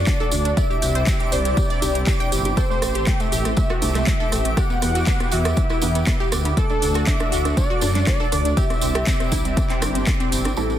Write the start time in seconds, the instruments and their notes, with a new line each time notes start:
Already playing: analog synth pad A3 D4 F#4, analog synth lead D5, synth texture D6
0.07 synth pluck D4, kick, clap, closed hi-hat, tambourine
0.20 synth pluck A4, tambourine, high conga
0.31 detuned saw bass D2, synth pluck D4, open hi-hat, tambourine
0.45 synth pluck D4, closed hi-hat, tambourine
0.57 analog synth pad C3 C4 E4 G4, synth pluck D5, analog synth lead E5, kick, closed hi-hat, tambourine
0.70 synth pluck G4, tambourine
0.82 detuned saw bass C2, synth pluck G4, open hi-hat, tambourine
0.95 synth pluck C5, closed hi-hat, tambourine
1.07 synth pluck G4, kick, clap, closed hi-hat, tambourine
1.20 synth pluck G4, closed hi-hat, tambourine
1.32 detuned saw bass C2, synth pluck C5, analog synth lead D5, open hi-hat, tambourine
1.45 synth pluck G4, closed hi-hat, tambourine
1.57 synth pluck G4, kick, closed hi-hat, tambourine
1.70 synth pluck D5, closed hi-hat, tambourine
1.82 detuned saw bass C2, synth pluck G4, open hi-hat, tambourine, high conga
1.95 synth pluck G4, closed hi-hat, tambourine
2.07 synth pluck G4, kick, clap, closed hi-hat, tambourine
2.20 synth pluck G5, closed hi-hat, tambourine
2.32 detuned saw bass G1, synth pluck G4, open hi-hat, tambourine
2.45 synth pluck G4, closed hi-hat, tambourine, high conga
2.57 analog synth pad A3, synth pluck A4, analog synth lead C5, kick, cross-stick, closed hi-hat, tambourine
2.70 synth pluck A3, analog synth lead C5, tambourine
2.82 detuned saw bass A1, synth pluck A3, cross-stick, open hi-hat, tambourine
2.94 synth pluck G4, closed hi-hat, tambourine
3.06 synth pluck A3, analog synth lead G5, kick, cross-stick, clap, closed hi-hat, tambourine
3.20 synth pluck A3, analog synth lead E5, closed hi-hat, tambourine
3.32 detuned saw bass A1, synth pluck G4, open hi-hat, tambourine
3.45 synth pluck A3, cross-stick, closed hi-hat, tambourine
3.57 synth pluck A3, analog synth lead E5, kick, closed hi-hat, tambourine
3.69 synth pluck F#4, cross-stick, tambourine
3.82 detuned saw bass C2, synth pluck A3, open hi-hat, tambourine, high conga
3.95 synth pluck A3, cross-stick, clap, closed hi-hat, tambourine, low conga
4.07 synth pluck A3, kick, clap, closed hi-hat, tambourine, low conga
4.20 synth pluck A4, tambourine, high conga
4.32 detuned saw bass A1, synth pluck A3, cross-stick, open hi-hat, tambourine
4.45 synth pluck A3, closed hi-hat, tambourine
4.57 analog synth pad B3 E4, synth pluck G4, analog synth lead F#5, kick, cross-stick, closed hi-hat, tambourine
4.70 synth pluck B3, tambourine
4.82 detuned saw bass E2, synth pluck B3, cross-stick, open hi-hat, tambourine
4.95 synth pluck F#4, closed hi-hat, tambourine
5.07 synth pluck B3, kick, clap, closed hi-hat, tambourine
5.20 synth pluck B3, cross-stick, closed hi-hat, tambourine
5.31 detuned saw bass E2, synth pluck F#4, analog synth lead E5, open hi-hat, tambourine
5.45 synth pluck B3, cross-stick, closed hi-hat, tambourine
5.57 synth pluck B3, kick, closed hi-hat, tambourine
5.69 synth pluck E4, cross-stick, tambourine
5.82 detuned saw bass E2, synth pluck B3, open hi-hat, tambourine, high conga
5.95 synth pluck B3, closed hi-hat, tambourine
6.07 synth pluck B3, kick, cross-stick, clap, closed hi-hat, tambourine
6.20 synth pluck G4, tambourine
6.32 detuned saw bass D2, synth pluck B3, cross-stick, open hi-hat, tambourine
6.45 synth pluck B3, closed hi-hat, tambourine, high conga
6.57 analog synth pad A3 D4 F#4, synth pluck A4, analog synth lead A4, kick, cross-stick, closed hi-hat, tambourine
6.70 synth pluck D4, analog synth lead A4, tambourine
6.82 detuned saw bass D2, synth pluck D4, open hi-hat, tambourine
6.94 synth pluck F#4, cross-stick, closed hi-hat, tambourine
7.07 synth pluck D4, analog synth lead E5, kick, clap, closed hi-hat, tambourine
7.20 synth pluck D4, cross-stick, closed hi-hat, tambourine
7.32 detuned saw bass D2, synth pluck F#4, open hi-hat, tambourine
7.45 synth pluck D4, cross-stick, closed hi-hat, tambourine
7.57 synth pluck D4, analog synth lead D5, kick, closed hi-hat, tambourine
7.70 synth pluck F#4, tambourine
7.81 detuned saw bass F#2, synth pluck D4, cross-stick, open hi-hat, tambourine, high conga
7.95 synth pluck D4, clap, closed hi-hat, tambourine, low conga
8.07 synth pluck D4, analog synth lead D5, kick, cross-stick, clap, closed hi-hat, tambourine, low conga
8.20 synth pluck A4, tambourine, high conga
8.32 detuned saw bass D2, synth pluck D4, cross-stick, open hi-hat, tambourine
8.45 synth pluck D4, closed hi-hat, tambourine
8.57 analog synth pad C3 C4 D4 E4 G4, synth pluck G4, analog synth lead E5, kick, closed hi-hat, tambourine
8.70 synth pluck C4, cross-stick, closed hi-hat, tambourine
8.81 detuned saw bass C2, synth pluck C4, open hi-hat, tambourine
8.95 synth pluck G4, cross-stick, closed hi-hat, tambourine
9.07 synth pluck C4, kick, clap, closed hi-hat, tambourine
9.20 synth pluck C4, cross-stick, closed hi-hat, tambourine
9.32 detuned saw bass C2, synth pluck E4, kick, open hi-hat, tambourine, high conga
9.45 synth pluck C4, closed hi-hat, tambourine, low conga
9.57 synth pluck C4, kick, cross-stick, closed hi-hat, tambourine
9.70 synth pluck C4, clap, closed hi-hat, tambourine
9.82 detuned saw bass G1, synth pluck C4, cross-stick, open hi-hat, tambourine, high conga
9.95 synth pluck C4, closed hi-hat, tambourine
10.07 synth pluck C4, kick, cross-stick, clap, closed hi-hat, tambourine
10.20 synth pluck C4, closed hi-hat, tambourine
10.32 detuned saw bass G1, synth pluck C4, open hi-hat, tambourine
10.45 synth pluck C4, cross-stick, closed hi-hat, tambourine, high conga
10.57 detuned saw bass A1, grand piano A2 G3 C4 E4 A4, analog synth pad A3 C4 G4, analog synth lead A4, synth texture F#6, tambourine
10.70 tambourine